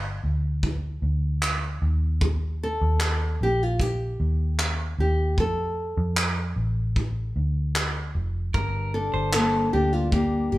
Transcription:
0.00 0.19 G1 medium
0.23 0.99 D2 medium
0.63 kick medium
1.02 1.78 D2 medium
1.42 clap medium
1.82 2.77 D#2 medium
2.21 kick loud
2.63 3.37 A4 medium
2.81 3.36 D#2 medium
3.00 clap loud
3.41 4.16 A#1 medium
3.41 3.63 G4 medium
3.63 3.81 F4 medium
3.80 4.99 G4 medium
3.80 kick medium
4.20 4.95 D#2 medium
4.59 clap medium
4.99 5.38 D#2 medium
4.99 5.40 G4 medium
5.38 5.93 F2 medium
5.38 6.14 A4 medium
5.38 kick loud
5.97 6.53 F2 medium
6.17 clap loud
6.56 7.32 A1 medium
6.96 kick medium
7.36 8.11 D2 medium
7.76 clap loud
8.15 8.51 F1 medium
8.54 9.10 G1 medium
8.54 10.58 G2 medium
8.54 8.92 A#4 medium
8.54 kick loud
8.94 9.72 D4 medium
8.94 9.31 A4 medium
9.14 9.69 G1 medium
9.14 9.70 C5 medium
9.33 10.12 A#3 medium
9.33 9.73 A4 medium
9.33 clap loud
9.73 10.48 D2 medium
9.73 10.58 D4 medium
9.73 9.93 G4 medium
9.93 10.13 F4 medium
10.12 10.58 A#3 medium
10.12 10.58 G4 medium
10.12 kick medium
10.52 10.58 G1 medium
10.52 10.58 G4 medium

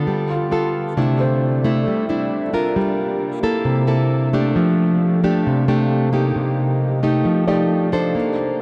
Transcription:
0.00 0.49 B3 medium
0.00 0.49 F4 medium
0.00 0.49 A4 medium
0.07 0.95 G3 medium
0.30 0.93 F4 soft
0.51 0.93 B3 medium
0.51 0.93 F4 soft
0.51 0.94 A4 medium
0.97 1.85 C3 medium
0.97 1.61 A3 medium
0.97 2.75 C4 medium
0.97 1.61 D4 soft
0.97 1.61 E4 medium
0.97 2.75 A4 medium
0.97 2.75 D5 medium
0.97 2.75 E5 medium
1.20 2.40 C5 soft
1.64 2.06 A3 medium
1.64 2.06 D4 medium
1.64 2.06 E4 medium
1.88 2.75 G3 medium
2.09 2.50 A3 medium
2.09 2.51 D4 medium
2.09 2.51 E4 medium
2.53 3.40 D4 medium
2.53 3.40 F4 medium
2.53 3.40 A#4 medium
2.76 3.43 G3 medium
2.76 4.54 A#3 medium
2.76 3.65 G4 medium
2.76 3.65 F5 medium
3.43 3.85 A#3 medium
3.43 3.85 E4 medium
3.43 3.85 A4 medium
3.65 4.53 C3 medium
3.65 6.33 D4 medium
3.65 6.33 A4 medium
3.65 4.56 C5 medium
3.65 4.56 E5 medium
3.87 4.29 A#3 medium
3.87 4.29 E4 medium
3.87 4.30 A4 medium
4.33 5.20 A3 medium
4.33 5.20 D4 medium
4.33 5.20 G4 medium
4.56 5.43 F3 medium
4.56 6.34 G4 medium
4.56 6.34 F5 medium
5.24 5.65 A3 medium
5.24 5.65 D4 medium
5.24 5.65 G4 medium
5.47 6.34 C3 medium
5.68 6.09 A3 medium
5.68 6.09 D4 medium
5.68 6.10 G4 medium
6.13 6.99 A#3 medium
6.13 6.99 D#4 medium
6.13 6.99 G4 medium
6.36 7.23 C3 medium
6.36 7.25 C4 medium
6.36 7.25 A#4 medium
6.36 7.25 D#5 medium
7.03 7.44 A3 medium
7.03 7.44 D#4 medium
7.03 7.44 G4 medium
7.25 8.13 F3 medium
7.25 8.14 D#4 medium
7.25 8.14 G4 medium
7.25 8.62 A4 medium
7.25 8.14 F5 medium
7.47 7.89 A3 medium
7.47 7.89 D#4 medium
7.47 7.89 G4 medium
7.47 8.33 D5 soft
7.92 8.62 D4 medium
7.92 8.62 A4 medium
7.92 8.62 C5 medium
8.15 8.62 A#3 medium
8.15 8.62 C5 medium
8.15 8.62 D5 medium

